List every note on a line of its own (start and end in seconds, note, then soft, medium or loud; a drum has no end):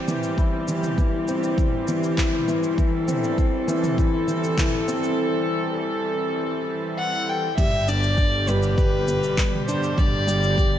0.00 0.19 G1 medium
0.00 0.08 E3 medium
0.00 7.54 E3 medium
0.00 7.54 G3 medium
0.00 1.28 C4 medium
0.00 7.54 C4 medium
0.00 0.38 E4 medium
0.00 2.74 G4 medium
0.08 0.37 E3 medium
0.08 mid tom medium
0.08 shaker medium
0.23 shaker soft
0.38 2.44 G1 loud
0.38 0.66 E4 medium
0.38 kick medium
0.38 shaker soft
0.68 0.97 E3 medium
0.68 shaker medium
0.83 mid tom medium
0.83 shaker soft
0.98 1.27 E3 medium
0.98 kick medium
0.98 shaker soft
1.28 1.45 C4 medium
1.28 shaker medium
1.43 shaker soft
1.58 kick loud
1.58 mid tom medium
1.58 shaker soft
1.88 2.17 E3 medium
1.88 shaker medium
2.03 shaker soft
2.18 2.46 E4 medium
2.18 kick medium
2.18 clap medium
2.18 shaker soft
2.33 mid tom medium
2.48 2.74 A1 medium
2.48 2.77 E3 medium
2.48 shaker medium
2.63 shaker soft
2.78 4.99 G1 loud
2.78 3.07 E3 medium
2.78 7.54 A4 medium
2.78 kick loud
2.78 shaker soft
3.08 3.25 C4 medium
3.08 mid tom medium
3.08 shaker medium
3.24 shaker soft
3.38 kick loud
3.38 shaker soft
3.68 3.96 E3 loud
3.68 shaker medium
3.84 mid tom medium
3.84 shaker soft
3.98 4.27 E4 medium
3.98 kick medium
3.98 shaker soft
4.28 4.56 E3 medium
4.28 shaker medium
4.44 shaker soft
4.58 4.87 E3 medium
4.58 kick medium
4.58 clap medium
4.58 mid tom medium
4.58 shaker soft
4.88 5.05 C4 medium
4.88 shaker medium
5.03 shaker soft
6.99 7.31 F#5 loud
7.29 7.58 G5 medium
7.58 9.79 G1 loud
7.58 10.79 B2 medium
7.58 10.79 D3 medium
7.58 10.79 G3 medium
7.58 7.87 G3 medium
7.58 10.79 G4 medium
7.58 7.90 E5 medium
7.58 kick loud
7.58 mid tom medium
7.58 crash loud
7.58 shaker soft
7.88 8.05 D4 medium
7.88 8.50 D5 loud
7.88 shaker medium
8.03 shaker soft
8.18 kick loud
8.18 shaker soft
8.48 8.77 G3 loud
8.48 9.67 B4 loud
8.48 shaker medium
8.63 shaker soft
8.78 9.07 G4 medium
8.78 kick loud
8.78 shaker soft
9.08 9.36 G3 medium
9.08 shaker medium
9.23 shaker soft
9.38 9.66 G3 medium
9.38 kick loud
9.38 clap medium
9.38 shaker soft
9.53 mid tom medium
9.68 9.85 D4 medium
9.68 10.00 C5 medium
9.68 shaker medium
9.83 shaker soft
9.98 10.79 G1 loud
9.98 10.79 D5 loud
9.98 kick loud
9.98 mid tom medium
9.98 shaker soft
10.27 10.56 G3 loud
10.27 shaker medium
10.43 shaker soft
10.58 10.79 G4 medium
10.58 kick loud
10.58 shaker soft